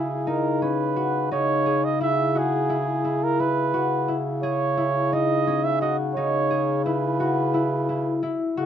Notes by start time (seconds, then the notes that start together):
Already playing: C#3 C#4 E4 F#4 G#4
0.27 D#4 A#4
0.62 C#4 B4
0.96 F#4
1.31 C#3 D#4 C#5
1.66 G#4
1.85 D#5
2.01 E4 E5
2.35 F#4 G#4
2.69 E4
3.05 E4
3.23 A#4
3.40 E4 B4
3.74 C#3 F#4
4.08 E4
4.43 G#4 C#5
4.77 E4
5.12 D#4 D#5
5.47 C#4
5.64 E5
5.81 F#4 D#5
6.15 C#3 D#4 C#5
6.51 G#4
6.86 E4 B4
7.20 F#4
7.54 E4
7.89 E4
8.23 E4
8.57 C#3 F#4